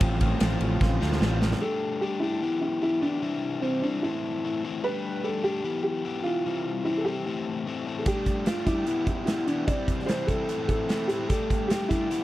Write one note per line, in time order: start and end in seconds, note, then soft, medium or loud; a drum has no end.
0.00 0.33 A1 medium
0.00 0.41 A2 loud
0.00 0.19 F3 medium
0.00 0.39 F3 medium
0.00 0.60 G3 medium
0.00 0.21 A3 medium
0.00 0.41 C4 medium
0.00 0.21 C4 loud
0.00 0.21 F4 medium
0.00 0.20 F4 loud
0.00 1.17 G5 medium
0.00 kick loud
0.00 ride medium
0.20 0.39 F3 medium
0.20 0.40 A3 medium
0.20 0.40 C4 medium
0.20 0.41 F4 medium
0.20 kick medium
0.20 ride medium
0.40 0.57 A1 medium
0.40 1.19 F3 medium
0.40 1.01 A3 medium
0.40 1.00 C4 medium
0.40 0.99 F4 medium
0.40 snare loud
0.40 ride medium
0.60 0.77 A1 medium
0.60 1.20 G3 medium
0.60 ride medium
0.81 0.97 A1 medium
0.81 1.61 F4 medium
0.81 kick medium
0.81 snare medium
1.00 1.18 D2 medium
1.00 1.20 A3 medium
1.00 1.20 C4 medium
1.00 1.21 F4 medium
1.00 snare medium
1.12 snare medium
1.20 1.53 A1 medium
1.20 1.59 A2 medium
1.20 1.60 F3 medium
1.20 1.61 G3 medium
1.20 1.42 A3 medium
1.20 1.41 C4 medium
1.20 1.40 F4 loud
1.20 snare medium
1.41 1.62 F3 medium
1.41 1.60 A3 medium
1.41 1.61 C4 medium
1.41 1.60 F4 medium
1.41 snare loud
1.52 snare medium
1.61 2.01 G3 medium
1.61 2.01 A3 medium
1.61 2.01 D4 medium
1.61 2.03 G4 medium
1.61 1.99 A4 medium
2.01 2.22 G3 medium
2.01 2.21 A3 medium
2.01 2.22 D4 medium
2.01 2.22 G4 medium
2.01 2.23 G4 medium
2.20 2.42 G3 medium
2.20 2.41 A3 medium
2.20 2.41 D4 medium
2.20 2.58 E4 medium
2.20 2.43 G4 medium
2.42 2.80 E3 medium
2.42 2.81 B3 medium
2.42 2.81 E4 medium
2.42 2.82 G4 medium
2.61 2.81 E4 medium
2.82 3.01 E3 medium
2.82 3.01 B3 medium
2.82 3.01 E4 medium
2.82 3.03 E4 medium
2.82 3.02 G4 medium
3.02 3.21 E3 medium
3.02 3.21 B3 medium
3.02 3.64 D4 medium
3.02 3.21 E4 medium
3.02 3.23 G4 medium
3.22 3.61 C3 medium
3.22 3.61 E3 medium
3.22 3.62 G3 medium
3.22 3.62 C4 medium
3.22 3.62 E4 medium
3.61 3.82 C3 medium
3.61 3.82 E3 medium
3.61 3.83 G3 medium
3.61 3.83 C4 medium
3.61 3.83 E4 medium
3.82 4.02 C3 medium
3.82 4.02 E3 medium
3.82 4.04 G3 medium
3.82 4.02 C4 medium
3.82 4.01 D4 medium
3.82 4.02 E4 medium
4.03 4.43 A2 medium
4.03 4.44 E3 medium
4.03 4.44 A3 medium
4.03 4.44 C4 medium
4.03 4.59 E4 medium
4.03 4.44 E4 medium
4.44 4.63 A2 medium
4.44 4.63 E3 medium
4.44 4.63 A3 medium
4.44 4.63 C4 medium
4.44 4.64 E4 medium
4.64 4.82 A2 medium
4.64 4.83 E3 medium
4.64 4.83 A3 medium
4.64 4.83 C4 medium
4.64 4.83 E4 medium
4.83 5.23 G3 medium
4.83 5.23 A3 medium
4.83 5.23 D4 medium
4.83 5.24 G4 loud
4.83 5.25 B4 medium
5.23 5.43 G3 medium
5.23 5.43 A3 medium
5.23 5.43 D4 medium
5.23 5.44 G4 medium
5.23 5.43 A4 medium
5.44 5.64 G3 medium
5.44 5.63 A3 medium
5.44 5.63 D4 medium
5.44 5.82 G4 medium
5.44 5.64 G4 medium
5.64 6.03 E3 medium
5.64 6.04 B3 medium
5.64 6.04 E4 medium
5.64 6.05 G4 medium
5.83 6.21 G4 medium
6.04 6.24 E3 medium
6.04 6.24 B3 medium
6.04 6.25 E4 medium
6.04 6.26 G4 medium
6.23 6.44 E3 medium
6.23 6.44 B3 medium
6.23 6.44 E4 medium
6.23 6.80 F4 medium
6.23 6.47 G4 medium
6.46 6.84 C3 medium
6.46 6.85 E3 medium
6.46 6.86 G3 medium
6.46 6.86 C4 medium
6.46 6.86 E4 medium
6.85 7.04 C3 medium
6.85 7.05 E3 medium
6.85 7.06 G3 medium
6.85 7.06 C4 medium
6.85 6.97 E4 medium
6.85 7.06 E4 medium
6.97 7.05 A4 medium
7.05 7.24 C3 medium
7.05 7.25 E3 medium
7.05 7.26 G3 medium
7.05 7.25 C4 medium
7.05 7.25 E4 medium
7.05 7.82 G4 medium
7.26 7.65 A2 medium
7.26 7.66 E3 medium
7.26 7.66 A3 medium
7.26 7.67 C4 medium
7.26 7.67 E4 medium
7.67 7.85 A2 medium
7.67 7.85 E3 medium
7.67 7.86 A3 medium
7.67 7.86 C4 medium
7.67 7.86 E4 medium
7.86 8.05 A2 medium
7.86 8.05 E3 medium
7.86 8.05 A3 medium
7.86 8.06 C4 medium
7.86 8.06 E4 medium
7.99 8.06 A4 medium
8.06 8.46 G3 medium
8.06 8.46 A3 medium
8.06 8.46 D4 loud
8.06 8.48 G4 medium
8.06 8.47 G4 medium
8.06 kick loud
8.06 closed hi-hat medium
8.26 kick medium
8.26 closed hi-hat medium
8.46 8.66 G3 medium
8.46 8.66 A3 medium
8.46 8.66 D4 medium
8.46 8.68 F4 medium
8.46 8.67 G4 medium
8.46 snare loud
8.46 closed hi-hat medium
8.66 8.86 G3 medium
8.66 8.86 A3 medium
8.66 8.86 D4 medium
8.66 9.04 E4 loud
8.66 8.88 G4 medium
8.66 kick medium
8.66 closed hi-hat medium
8.85 9.25 E2 medium
8.85 9.26 B2 medium
8.85 9.26 E3 medium
8.85 9.28 G3 medium
8.85 9.27 B3 medium
8.85 9.27 E4 medium
8.85 9.28 G4 medium
8.85 closed hi-hat medium
9.07 9.24 E4 medium
9.07 kick medium
9.07 closed hi-hat soft
9.26 9.45 E2 medium
9.26 9.46 B2 medium
9.26 9.46 E3 medium
9.26 9.48 G3 medium
9.26 9.46 B3 medium
9.26 9.45 E4 medium
9.26 9.47 E4 medium
9.26 9.48 G4 medium
9.26 snare loud
9.26 closed hi-hat medium
9.46 9.66 E2 medium
9.46 9.67 B2 medium
9.46 9.66 E3 medium
9.46 9.68 G3 medium
9.46 9.67 B3 medium
9.46 9.66 D4 medium
9.46 9.67 E4 medium
9.46 9.68 G4 medium
9.46 closed hi-hat medium
9.67 10.06 C3 medium
9.67 10.07 E3 medium
9.67 10.08 G3 medium
9.67 10.07 C4 medium
9.67 10.08 E4 medium
9.67 10.05 D5 medium
9.67 kick loud
9.67 closed hi-hat medium
9.88 kick medium
9.88 closed hi-hat medium
10.00 snare soft
10.06 10.27 C3 medium
10.06 10.27 E3 medium
10.06 10.28 G3 medium
10.06 10.28 C4 medium
10.06 10.28 E4 medium
10.06 10.28 C5 medium
10.06 snare medium
10.06 closed hi-hat medium
10.27 10.47 C3 medium
10.27 10.47 E3 medium
10.27 10.49 G3 medium
10.27 10.48 C4 medium
10.27 10.48 E4 medium
10.27 10.67 A4 medium
10.27 kick medium
10.27 closed hi-hat medium
10.48 10.87 A2 medium
10.48 10.88 E3 medium
10.48 10.89 A3 medium
10.48 10.89 C4 medium
10.48 10.89 E4 medium
10.48 closed hi-hat medium
10.68 11.10 A4 medium
10.68 kick medium
10.68 closed hi-hat soft
10.89 11.07 A2 medium
10.89 11.08 E3 medium
10.89 11.08 A3 medium
10.89 11.09 C4 medium
10.89 11.09 E4 medium
10.89 snare loud
10.89 closed hi-hat medium
11.08 11.28 A2 medium
11.08 11.28 E3 medium
11.08 11.28 A3 medium
11.08 11.29 C4 medium
11.08 11.29 E4 medium
11.08 11.29 G4 medium
11.08 closed hi-hat medium
11.28 11.69 G3 medium
11.28 11.69 A3 medium
11.28 11.69 D4 medium
11.28 11.70 G4 loud
11.28 11.71 A4 medium
11.28 kick medium
11.28 closed hi-hat medium
11.50 kick medium
11.50 closed hi-hat medium
11.68 11.89 G3 medium
11.68 11.89 A3 medium
11.68 11.89 D4 medium
11.68 11.90 G4 medium
11.68 snare loud
11.68 closed hi-hat medium
11.89 12.10 G3 medium
11.89 12.09 A3 medium
11.89 12.09 D4 medium
11.89 12.24 E4 loud
11.89 12.11 G4 medium
11.89 kick medium
11.89 closed hi-hat medium
12.10 12.24 E2 medium
12.10 12.24 B2 medium
12.10 12.24 E3 medium
12.10 12.24 G3 medium
12.10 12.24 B3 medium
12.10 12.24 E4 loud
12.10 12.24 G4 loud
12.10 closed hi-hat medium